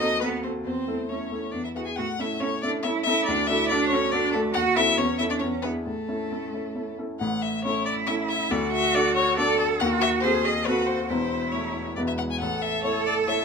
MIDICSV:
0, 0, Header, 1, 4, 480
1, 0, Start_track
1, 0, Key_signature, 3, "major"
1, 0, Tempo, 439560
1, 714, Time_signature, 3, 2, 24, 8
1, 2640, Tempo, 426743
1, 5520, Tempo, 444115
1, 8400, Tempo, 433213
1, 14833, End_track
2, 0, Start_track
2, 0, Title_t, "Violin"
2, 0, Program_c, 0, 40
2, 0, Note_on_c, 0, 75, 127
2, 222, Note_off_c, 0, 75, 0
2, 228, Note_on_c, 0, 71, 94
2, 316, Note_off_c, 0, 71, 0
2, 474, Note_on_c, 0, 72, 80
2, 561, Note_off_c, 0, 72, 0
2, 707, Note_on_c, 0, 72, 84
2, 1194, Note_on_c, 0, 73, 72
2, 1210, Note_off_c, 0, 72, 0
2, 1657, Note_on_c, 0, 74, 79
2, 1674, Note_off_c, 0, 73, 0
2, 1787, Note_off_c, 0, 74, 0
2, 1799, Note_on_c, 0, 76, 62
2, 1846, Note_off_c, 0, 76, 0
2, 1921, Note_on_c, 0, 78, 90
2, 1968, Note_off_c, 0, 78, 0
2, 2026, Note_on_c, 0, 80, 80
2, 2140, Note_on_c, 0, 78, 95
2, 2156, Note_off_c, 0, 80, 0
2, 2412, Note_on_c, 0, 76, 93
2, 2429, Note_off_c, 0, 78, 0
2, 2627, Note_on_c, 0, 73, 105
2, 2643, Note_off_c, 0, 76, 0
2, 2865, Note_off_c, 0, 73, 0
2, 2871, Note_on_c, 0, 74, 109
2, 2961, Note_off_c, 0, 74, 0
2, 3104, Note_on_c, 0, 76, 102
2, 3194, Note_off_c, 0, 76, 0
2, 3334, Note_on_c, 0, 76, 127
2, 3573, Note_off_c, 0, 76, 0
2, 3579, Note_on_c, 0, 74, 111
2, 3826, Note_on_c, 0, 76, 127
2, 3843, Note_off_c, 0, 74, 0
2, 4061, Note_off_c, 0, 76, 0
2, 4068, Note_on_c, 0, 74, 121
2, 4287, Note_off_c, 0, 74, 0
2, 4294, Note_on_c, 0, 73, 118
2, 4549, Note_on_c, 0, 74, 120
2, 4566, Note_off_c, 0, 73, 0
2, 4775, Note_off_c, 0, 74, 0
2, 4781, Note_on_c, 0, 69, 111
2, 4871, Note_off_c, 0, 69, 0
2, 5026, Note_on_c, 0, 78, 118
2, 5116, Note_off_c, 0, 78, 0
2, 5279, Note_on_c, 0, 76, 127
2, 5522, Note_on_c, 0, 73, 113
2, 5538, Note_off_c, 0, 76, 0
2, 5739, Note_off_c, 0, 73, 0
2, 5745, Note_on_c, 0, 76, 113
2, 5794, Note_off_c, 0, 76, 0
2, 5869, Note_on_c, 0, 74, 92
2, 5917, Note_off_c, 0, 74, 0
2, 5968, Note_on_c, 0, 73, 88
2, 6054, Note_off_c, 0, 73, 0
2, 6218, Note_on_c, 0, 71, 96
2, 6305, Note_off_c, 0, 71, 0
2, 6451, Note_on_c, 0, 69, 76
2, 7645, Note_off_c, 0, 69, 0
2, 7917, Note_on_c, 0, 78, 92
2, 8160, Note_on_c, 0, 76, 104
2, 8177, Note_off_c, 0, 78, 0
2, 8394, Note_off_c, 0, 76, 0
2, 8400, Note_on_c, 0, 73, 112
2, 8628, Note_off_c, 0, 73, 0
2, 8635, Note_on_c, 0, 74, 109
2, 8724, Note_off_c, 0, 74, 0
2, 8871, Note_on_c, 0, 76, 112
2, 8960, Note_off_c, 0, 76, 0
2, 9117, Note_on_c, 0, 76, 108
2, 9365, Note_on_c, 0, 74, 102
2, 9382, Note_off_c, 0, 76, 0
2, 9593, Note_off_c, 0, 74, 0
2, 9600, Note_on_c, 0, 76, 127
2, 9842, Note_on_c, 0, 74, 123
2, 9859, Note_off_c, 0, 76, 0
2, 10068, Note_off_c, 0, 74, 0
2, 10075, Note_on_c, 0, 73, 127
2, 10309, Note_off_c, 0, 73, 0
2, 10315, Note_on_c, 0, 74, 127
2, 10553, Note_off_c, 0, 74, 0
2, 10559, Note_on_c, 0, 69, 127
2, 10647, Note_off_c, 0, 69, 0
2, 10792, Note_on_c, 0, 78, 124
2, 10880, Note_off_c, 0, 78, 0
2, 11025, Note_on_c, 0, 76, 127
2, 11114, Note_off_c, 0, 76, 0
2, 11242, Note_on_c, 0, 72, 127
2, 11516, Note_on_c, 0, 75, 119
2, 11533, Note_off_c, 0, 72, 0
2, 11751, Note_on_c, 0, 71, 118
2, 11768, Note_off_c, 0, 75, 0
2, 11973, Note_on_c, 0, 72, 104
2, 11990, Note_off_c, 0, 71, 0
2, 12198, Note_off_c, 0, 72, 0
2, 12205, Note_on_c, 0, 72, 108
2, 12699, Note_on_c, 0, 73, 88
2, 12715, Note_off_c, 0, 72, 0
2, 13176, Note_off_c, 0, 73, 0
2, 13183, Note_on_c, 0, 74, 97
2, 13233, Note_off_c, 0, 74, 0
2, 13311, Note_on_c, 0, 76, 104
2, 13360, Note_off_c, 0, 76, 0
2, 13428, Note_on_c, 0, 78, 97
2, 13477, Note_off_c, 0, 78, 0
2, 13573, Note_on_c, 0, 80, 99
2, 13670, Note_off_c, 0, 80, 0
2, 13677, Note_on_c, 0, 78, 93
2, 13917, Note_on_c, 0, 76, 105
2, 13934, Note_off_c, 0, 78, 0
2, 14151, Note_off_c, 0, 76, 0
2, 14158, Note_on_c, 0, 73, 103
2, 14393, Note_off_c, 0, 73, 0
2, 14405, Note_on_c, 0, 74, 119
2, 14493, Note_off_c, 0, 74, 0
2, 14640, Note_on_c, 0, 76, 114
2, 14833, Note_off_c, 0, 76, 0
2, 14833, End_track
3, 0, Start_track
3, 0, Title_t, "Cello"
3, 0, Program_c, 1, 42
3, 0, Note_on_c, 1, 63, 93
3, 228, Note_off_c, 1, 63, 0
3, 235, Note_on_c, 1, 59, 91
3, 465, Note_off_c, 1, 59, 0
3, 471, Note_on_c, 1, 60, 70
3, 559, Note_off_c, 1, 60, 0
3, 705, Note_on_c, 1, 60, 91
3, 1183, Note_off_c, 1, 60, 0
3, 1197, Note_on_c, 1, 61, 64
3, 1664, Note_on_c, 1, 62, 62
3, 1680, Note_off_c, 1, 61, 0
3, 1798, Note_on_c, 1, 64, 56
3, 1815, Note_off_c, 1, 62, 0
3, 1918, Note_off_c, 1, 64, 0
3, 1924, Note_on_c, 1, 66, 71
3, 2028, Note_off_c, 1, 66, 0
3, 2035, Note_on_c, 1, 68, 72
3, 2084, Note_off_c, 1, 68, 0
3, 2153, Note_on_c, 1, 66, 104
3, 2240, Note_off_c, 1, 66, 0
3, 2393, Note_on_c, 1, 64, 69
3, 2481, Note_off_c, 1, 64, 0
3, 2626, Note_on_c, 1, 61, 96
3, 2716, Note_off_c, 1, 61, 0
3, 2880, Note_on_c, 1, 62, 77
3, 3112, Note_off_c, 1, 62, 0
3, 3119, Note_on_c, 1, 64, 94
3, 3352, Note_off_c, 1, 64, 0
3, 3359, Note_on_c, 1, 64, 102
3, 3613, Note_on_c, 1, 62, 110
3, 3630, Note_off_c, 1, 64, 0
3, 3845, Note_off_c, 1, 62, 0
3, 3852, Note_on_c, 1, 64, 102
3, 4093, Note_on_c, 1, 62, 118
3, 4110, Note_off_c, 1, 64, 0
3, 4333, Note_on_c, 1, 61, 106
3, 4350, Note_off_c, 1, 62, 0
3, 4570, Note_on_c, 1, 62, 106
3, 4587, Note_off_c, 1, 61, 0
3, 4798, Note_on_c, 1, 57, 106
3, 4815, Note_off_c, 1, 62, 0
3, 5023, Note_off_c, 1, 57, 0
3, 5030, Note_on_c, 1, 66, 124
3, 5267, Note_on_c, 1, 64, 102
3, 5284, Note_off_c, 1, 66, 0
3, 5502, Note_on_c, 1, 61, 102
3, 5519, Note_off_c, 1, 64, 0
3, 5746, Note_on_c, 1, 64, 93
3, 5762, Note_off_c, 1, 61, 0
3, 5863, Note_off_c, 1, 64, 0
3, 5869, Note_on_c, 1, 62, 80
3, 5978, Note_on_c, 1, 61, 90
3, 5994, Note_off_c, 1, 62, 0
3, 6225, Note_off_c, 1, 61, 0
3, 6233, Note_on_c, 1, 59, 79
3, 6319, Note_off_c, 1, 59, 0
3, 6479, Note_on_c, 1, 57, 69
3, 7660, Note_off_c, 1, 57, 0
3, 8403, Note_on_c, 1, 64, 92
3, 9364, Note_on_c, 1, 66, 118
3, 9380, Note_off_c, 1, 64, 0
3, 10320, Note_on_c, 1, 69, 116
3, 10336, Note_off_c, 1, 66, 0
3, 10796, Note_on_c, 1, 66, 123
3, 10812, Note_off_c, 1, 69, 0
3, 11270, Note_on_c, 1, 68, 107
3, 11287, Note_off_c, 1, 66, 0
3, 11737, Note_off_c, 1, 68, 0
3, 11743, Note_on_c, 1, 66, 95
3, 12223, Note_on_c, 1, 64, 86
3, 12239, Note_off_c, 1, 66, 0
3, 13433, Note_off_c, 1, 64, 0
3, 13670, Note_on_c, 1, 69, 118
3, 14833, Note_off_c, 1, 69, 0
3, 14833, End_track
4, 0, Start_track
4, 0, Title_t, "Grand piano"
4, 0, Program_c, 2, 0
4, 0, Control_c, 2, 64, 127
4, 0, Note_on_c, 2, 39, 104
4, 0, Note_on_c, 2, 60, 64
4, 0, Note_on_c, 2, 66, 60
4, 0, Note_on_c, 2, 69, 71
4, 3, Note_off_c, 2, 60, 0
4, 3, Note_on_c, 2, 60, 55
4, 6, Note_off_c, 2, 66, 0
4, 6, Note_on_c, 2, 66, 57
4, 11, Note_off_c, 2, 69, 0
4, 11, Note_on_c, 2, 69, 70
4, 214, Note_off_c, 2, 60, 0
4, 216, Note_off_c, 2, 66, 0
4, 219, Note_off_c, 2, 69, 0
4, 239, Note_on_c, 2, 60, 58
4, 244, Note_on_c, 2, 66, 57
4, 248, Note_on_c, 2, 69, 63
4, 452, Note_off_c, 2, 60, 0
4, 454, Note_off_c, 2, 66, 0
4, 457, Note_off_c, 2, 69, 0
4, 478, Note_on_c, 2, 60, 55
4, 488, Note_on_c, 2, 66, 56
4, 489, Note_on_c, 2, 69, 61
4, 693, Note_off_c, 2, 60, 0
4, 698, Note_off_c, 2, 66, 0
4, 699, Note_off_c, 2, 69, 0
4, 705, Note_on_c, 2, 40, 67
4, 735, Control_c, 2, 64, 0
4, 743, Note_off_c, 2, 39, 0
4, 924, Control_c, 2, 64, 127
4, 944, Note_off_c, 2, 40, 0
4, 954, Note_on_c, 2, 57, 45
4, 955, Note_on_c, 2, 64, 53
4, 963, Note_on_c, 2, 69, 58
4, 1172, Note_off_c, 2, 57, 0
4, 1173, Note_off_c, 2, 64, 0
4, 1177, Note_off_c, 2, 69, 0
4, 1202, Note_on_c, 2, 57, 40
4, 1205, Note_on_c, 2, 64, 49
4, 1205, Note_on_c, 2, 69, 51
4, 1416, Note_off_c, 2, 57, 0
4, 1418, Note_off_c, 2, 64, 0
4, 1418, Note_off_c, 2, 69, 0
4, 1437, Note_on_c, 2, 57, 44
4, 1445, Note_on_c, 2, 64, 46
4, 1448, Note_on_c, 2, 69, 45
4, 1653, Note_off_c, 2, 57, 0
4, 1657, Note_off_c, 2, 64, 0
4, 1659, Note_off_c, 2, 69, 0
4, 1674, Note_on_c, 2, 40, 67
4, 1700, Control_c, 2, 64, 0
4, 1854, Control_c, 2, 64, 127
4, 1909, Note_off_c, 2, 40, 0
4, 1912, Note_on_c, 2, 59, 47
4, 1917, Note_on_c, 2, 64, 45
4, 1924, Note_on_c, 2, 68, 50
4, 2132, Note_off_c, 2, 59, 0
4, 2135, Note_off_c, 2, 64, 0
4, 2138, Note_off_c, 2, 68, 0
4, 2170, Note_on_c, 2, 45, 80
4, 2180, Control_c, 2, 64, 0
4, 2390, Control_c, 2, 64, 127
4, 2396, Note_on_c, 2, 61, 58
4, 2399, Note_off_c, 2, 45, 0
4, 2401, Note_on_c, 2, 64, 67
4, 2407, Note_on_c, 2, 69, 58
4, 2613, Note_off_c, 2, 61, 0
4, 2616, Note_off_c, 2, 64, 0
4, 2619, Note_off_c, 2, 69, 0
4, 2641, Note_on_c, 2, 61, 54
4, 2644, Note_on_c, 2, 64, 58
4, 2650, Note_on_c, 2, 69, 54
4, 2859, Note_off_c, 2, 61, 0
4, 2861, Note_off_c, 2, 64, 0
4, 2864, Note_off_c, 2, 69, 0
4, 2883, Note_on_c, 2, 61, 52
4, 2885, Note_on_c, 2, 64, 65
4, 2893, Note_on_c, 2, 69, 63
4, 3100, Note_off_c, 2, 61, 0
4, 3101, Note_off_c, 2, 64, 0
4, 3105, Note_off_c, 2, 69, 0
4, 3120, Note_on_c, 2, 61, 63
4, 3125, Note_on_c, 2, 64, 63
4, 3130, Note_on_c, 2, 69, 74
4, 3338, Note_off_c, 2, 61, 0
4, 3341, Note_off_c, 2, 64, 0
4, 3343, Note_off_c, 2, 69, 0
4, 3371, Note_on_c, 2, 61, 64
4, 3380, Note_on_c, 2, 64, 64
4, 3380, Note_on_c, 2, 69, 73
4, 3584, Note_off_c, 2, 61, 0
4, 3589, Note_off_c, 2, 64, 0
4, 3589, Note_off_c, 2, 69, 0
4, 3612, Note_on_c, 2, 38, 96
4, 3627, Control_c, 2, 64, 0
4, 3798, Control_c, 2, 64, 127
4, 3841, Note_off_c, 2, 38, 0
4, 3845, Note_on_c, 2, 62, 84
4, 3848, Note_on_c, 2, 66, 77
4, 3853, Note_on_c, 2, 69, 88
4, 4060, Note_off_c, 2, 62, 0
4, 4062, Note_off_c, 2, 66, 0
4, 4065, Note_off_c, 2, 69, 0
4, 4090, Note_on_c, 2, 62, 72
4, 4097, Note_on_c, 2, 66, 66
4, 4100, Note_on_c, 2, 69, 67
4, 4303, Note_off_c, 2, 62, 0
4, 4307, Note_off_c, 2, 66, 0
4, 4309, Note_off_c, 2, 69, 0
4, 4325, Note_on_c, 2, 62, 67
4, 4332, Note_on_c, 2, 66, 73
4, 4336, Note_on_c, 2, 69, 82
4, 4540, Note_off_c, 2, 62, 0
4, 4544, Note_off_c, 2, 66, 0
4, 4546, Note_off_c, 2, 69, 0
4, 4565, Note_on_c, 2, 62, 82
4, 4575, Note_on_c, 2, 66, 69
4, 4575, Note_on_c, 2, 69, 79
4, 4778, Note_off_c, 2, 62, 0
4, 4784, Note_off_c, 2, 66, 0
4, 4784, Note_off_c, 2, 69, 0
4, 4798, Note_on_c, 2, 62, 73
4, 4804, Note_on_c, 2, 66, 78
4, 4805, Note_on_c, 2, 69, 79
4, 5014, Note_off_c, 2, 62, 0
4, 5017, Note_off_c, 2, 66, 0
4, 5018, Note_off_c, 2, 69, 0
4, 5045, Note_on_c, 2, 39, 93
4, 5060, Control_c, 2, 64, 0
4, 5251, Control_c, 2, 64, 127
4, 5274, Note_off_c, 2, 39, 0
4, 5281, Note_on_c, 2, 60, 71
4, 5284, Note_on_c, 2, 66, 70
4, 5286, Note_on_c, 2, 69, 81
4, 5497, Note_off_c, 2, 60, 0
4, 5498, Note_off_c, 2, 66, 0
4, 5500, Note_off_c, 2, 69, 0
4, 5518, Note_on_c, 2, 40, 91
4, 5542, Control_c, 2, 64, 0
4, 5689, Control_c, 2, 64, 127
4, 5746, Note_off_c, 2, 40, 0
4, 5759, Note_on_c, 2, 64, 63
4, 5760, Note_on_c, 2, 61, 63
4, 5764, Note_on_c, 2, 69, 70
4, 5970, Note_off_c, 2, 64, 0
4, 5971, Note_off_c, 2, 61, 0
4, 5974, Note_off_c, 2, 69, 0
4, 5993, Note_on_c, 2, 40, 81
4, 6011, Control_c, 2, 64, 0
4, 6172, Control_c, 2, 64, 127
4, 6225, Note_off_c, 2, 40, 0
4, 6236, Note_on_c, 2, 62, 51
4, 6239, Note_on_c, 2, 64, 61
4, 6241, Note_on_c, 2, 68, 58
4, 6451, Note_off_c, 2, 62, 0
4, 6453, Note_off_c, 2, 64, 0
4, 6454, Note_off_c, 2, 68, 0
4, 6471, Note_on_c, 2, 45, 65
4, 6495, Control_c, 2, 64, 0
4, 6673, Control_c, 2, 64, 127
4, 6706, Note_off_c, 2, 45, 0
4, 6716, Note_on_c, 2, 61, 49
4, 6721, Note_on_c, 2, 64, 55
4, 6729, Note_on_c, 2, 69, 50
4, 6932, Note_off_c, 2, 61, 0
4, 6936, Note_off_c, 2, 64, 0
4, 6940, Note_off_c, 2, 69, 0
4, 6969, Note_on_c, 2, 61, 41
4, 6970, Note_on_c, 2, 64, 48
4, 6978, Note_on_c, 2, 69, 48
4, 7181, Note_off_c, 2, 61, 0
4, 7181, Note_off_c, 2, 64, 0
4, 7186, Note_off_c, 2, 69, 0
4, 7203, Note_on_c, 2, 61, 44
4, 7208, Note_on_c, 2, 64, 46
4, 7214, Note_on_c, 2, 69, 47
4, 7418, Note_off_c, 2, 61, 0
4, 7421, Note_off_c, 2, 64, 0
4, 7424, Note_off_c, 2, 69, 0
4, 7439, Note_on_c, 2, 61, 45
4, 7443, Note_on_c, 2, 64, 43
4, 7447, Note_on_c, 2, 69, 50
4, 7656, Note_off_c, 2, 61, 0
4, 7659, Note_off_c, 2, 64, 0
4, 7661, Note_off_c, 2, 69, 0
4, 7690, Note_on_c, 2, 61, 49
4, 7693, Note_on_c, 2, 64, 46
4, 7699, Note_on_c, 2, 69, 55
4, 7902, Note_off_c, 2, 61, 0
4, 7904, Note_off_c, 2, 64, 0
4, 7907, Note_off_c, 2, 69, 0
4, 7928, Note_on_c, 2, 33, 81
4, 7933, Note_on_c, 2, 45, 90
4, 7943, Control_c, 2, 64, 0
4, 8143, Control_c, 2, 64, 127
4, 8408, Note_on_c, 2, 61, 63
4, 8418, Note_on_c, 2, 64, 57
4, 8420, Note_on_c, 2, 69, 64
4, 8839, Note_off_c, 2, 61, 0
4, 8844, Note_off_c, 2, 64, 0
4, 8845, Note_off_c, 2, 69, 0
4, 8882, Note_on_c, 2, 64, 62
4, 8885, Note_on_c, 2, 61, 67
4, 8892, Note_on_c, 2, 69, 70
4, 9318, Note_off_c, 2, 64, 0
4, 9319, Note_off_c, 2, 61, 0
4, 9320, Note_off_c, 2, 33, 0
4, 9323, Note_off_c, 2, 45, 0
4, 9323, Note_off_c, 2, 69, 0
4, 9360, Note_on_c, 2, 38, 107
4, 9360, Note_on_c, 2, 50, 84
4, 9381, Control_c, 2, 64, 0
4, 9535, Control_c, 2, 64, 127
4, 9844, Note_on_c, 2, 62, 74
4, 9851, Note_on_c, 2, 66, 78
4, 9856, Note_on_c, 2, 69, 88
4, 10277, Note_off_c, 2, 62, 0
4, 10281, Note_off_c, 2, 66, 0
4, 10283, Note_off_c, 2, 69, 0
4, 10325, Note_on_c, 2, 66, 81
4, 10326, Note_on_c, 2, 62, 90
4, 10330, Note_on_c, 2, 69, 91
4, 10757, Note_off_c, 2, 38, 0
4, 10757, Note_off_c, 2, 50, 0
4, 10758, Note_off_c, 2, 62, 0
4, 10758, Note_off_c, 2, 66, 0
4, 10760, Note_off_c, 2, 69, 0
4, 10803, Note_on_c, 2, 39, 115
4, 10803, Note_on_c, 2, 51, 94
4, 10823, Control_c, 2, 64, 0
4, 10987, Control_c, 2, 64, 127
4, 11281, Note_on_c, 2, 60, 80
4, 11288, Note_on_c, 2, 66, 71
4, 11291, Note_on_c, 2, 69, 78
4, 11705, Note_off_c, 2, 60, 0
4, 11708, Note_off_c, 2, 66, 0
4, 11710, Note_off_c, 2, 69, 0
4, 11757, Note_on_c, 2, 60, 74
4, 11767, Note_on_c, 2, 66, 77
4, 11770, Note_on_c, 2, 69, 74
4, 12181, Note_off_c, 2, 39, 0
4, 12181, Note_off_c, 2, 51, 0
4, 12184, Note_off_c, 2, 60, 0
4, 12189, Note_off_c, 2, 66, 0
4, 12190, Note_off_c, 2, 69, 0
4, 12229, Note_on_c, 2, 28, 81
4, 12231, Note_on_c, 2, 40, 93
4, 12244, Control_c, 2, 64, 0
4, 12410, Control_c, 2, 64, 127
4, 12710, Note_on_c, 2, 57, 53
4, 12714, Note_on_c, 2, 64, 52
4, 12720, Note_on_c, 2, 69, 59
4, 13148, Note_off_c, 2, 57, 0
4, 13151, Note_off_c, 2, 64, 0
4, 13153, Note_off_c, 2, 69, 0
4, 13164, Note_off_c, 2, 28, 0
4, 13165, Note_off_c, 2, 40, 0
4, 13197, Note_on_c, 2, 28, 71
4, 13197, Note_on_c, 2, 40, 77
4, 13197, Note_on_c, 2, 56, 55
4, 13202, Note_on_c, 2, 64, 59
4, 13208, Note_on_c, 2, 71, 62
4, 13209, Control_c, 2, 64, 0
4, 13395, Control_c, 2, 64, 127
4, 13636, Note_off_c, 2, 56, 0
4, 13638, Note_off_c, 2, 64, 0
4, 13641, Note_off_c, 2, 71, 0
4, 13665, Note_off_c, 2, 28, 0
4, 13666, Note_off_c, 2, 40, 0
4, 13683, Note_on_c, 2, 45, 84
4, 13686, Note_on_c, 2, 33, 80
4, 13697, Control_c, 2, 64, 0
4, 13904, Control_c, 2, 64, 127
4, 14158, Note_on_c, 2, 57, 60
4, 14164, Note_on_c, 2, 64, 66
4, 14164, Note_on_c, 2, 73, 65
4, 14593, Note_off_c, 2, 57, 0
4, 14596, Note_off_c, 2, 64, 0
4, 14596, Note_off_c, 2, 73, 0
4, 14640, Note_on_c, 2, 57, 62
4, 14645, Note_on_c, 2, 64, 75
4, 14649, Note_on_c, 2, 73, 72
4, 14833, Note_off_c, 2, 33, 0
4, 14833, Note_off_c, 2, 45, 0
4, 14833, Note_off_c, 2, 57, 0
4, 14833, Note_off_c, 2, 64, 0
4, 14833, Note_off_c, 2, 73, 0
4, 14833, End_track
0, 0, End_of_file